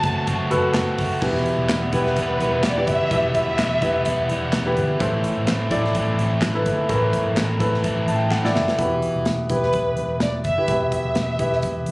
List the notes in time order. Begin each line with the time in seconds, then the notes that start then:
Already playing: F#3 F#4 A4 B4 C5 A5
0.03 F#1 A3 C4 F#4, kick, closed hi-hat
0.27 F#1 F#3 A3 C4 F#4, kick, closed hi-hat
0.51 F#1 F#4 A4 B4, closed hi-hat
0.74 F#1 F#3 A3 C4 F#4, snare, clap, closed hi-hat
0.98 F#1 A3 C4 F#4, kick, open hi-hat
1.21 E1 E2 B2 E3 G3 B3 E4 G4 B4, kick, crash
1.46 closed hi-hat
1.59 E1
1.69 E1 E3 G3 B3 E4, snare, clap, closed hi-hat
1.92 E1 E3 G3 B3 E4 G4 B4, kick, closed hi-hat
2.06 snare
2.16 E1 E3 G3 B3 E4, kick, closed hi-hat
2.40 E1 E3 G3 B3 E4, closed hi-hat
2.63 E1 E3 G3 B3 E4 D5, snare, clap, closed hi-hat
2.78 E4 G4 B4
2.87 F#1 E5, kick, closed hi-hat
3.11 E1 E2 B2 E3 G3 B3 E4 G4 B4, kick, closed hi-hat
3.35 E5, kick, closed hi-hat
3.48 E1
3.58 E1 E3 G3 B3 E4, snare, clap, closed hi-hat
3.82 E1 E3 G3 B3 E4 G4 B4, kick, closed hi-hat
4.05 E1 E3 G3 B3 E4, kick, closed hi-hat
4.29 E1 E3 G3 B3 E4, closed hi-hat
4.53 E1 E3 G3 B3 E4, snare, clap, closed hi-hat
4.67 E4 G4 B4
4.77 G1, closed hi-hat
5.00 A1 A2 E3 A3 C4 E4 A4 C5, kick, closed hi-hat
5.24 closed hi-hat
5.37 A1
5.47 A1 E3 A3 C4 E4, snare, clap, closed hi-hat
5.71 A1 A3 C4 E4 A4 D5, kick, closed hi-hat
5.85 snare
5.94 A1 E3 A3 C4 E4, kick, closed hi-hat
6.18 A1 A3 C4 E4, closed hi-hat
6.41 A1 E3 A3 C4 E4, snare, clap, closed hi-hat
6.55 E4 A4 B4
6.66 G1, kick, closed hi-hat
6.89 A1 A2 E3 A3 C4 E4 A4 A#4, kick, closed hi-hat
6.95 B4
7.13 kick, closed hi-hat
7.26 A1
7.36 A1 E3 A3 C4 E4, snare, clap, closed hi-hat
7.59 A1 A3 C4 E4 A4 B4, kick, closed hi-hat
7.74 snare
7.83 A1 E3 A3 C4 E4, kick, closed hi-hat
8.07 A1 A3 C4 E4 A5, closed hi-hat
8.16 G5
8.30 A1 E3 A3 C4 E4 F#5, snare, clap
8.44 E4 A4 D5, snare
8.55 F#1 E5, snare
8.68 snare
8.78 E1 B2 E4 F#4 B4, kick, closed hi-hat
8.84 G4
9.02 closed hi-hat
9.16 E1
9.25 E1, snare, closed hi-hat
9.49 E1 E4 G4 B4, kick, closed hi-hat
9.63 snare
9.73 E1, kick, closed hi-hat
9.97 E1, closed hi-hat
10.20 E1 D5, snare, closed hi-hat
10.44 F#1 E5, kick, closed hi-hat
10.58 E4 G4 B4
10.68 E1 B2 E4 G4 B4, kick, closed hi-hat
10.92 E5, kick, closed hi-hat
11.05 E1
11.15 E1, snare, closed hi-hat
11.39 E1 E4 G4 B4, kick, closed hi-hat
11.53 snare
11.62 E1, kick, closed hi-hat
11.86 E1, closed hi-hat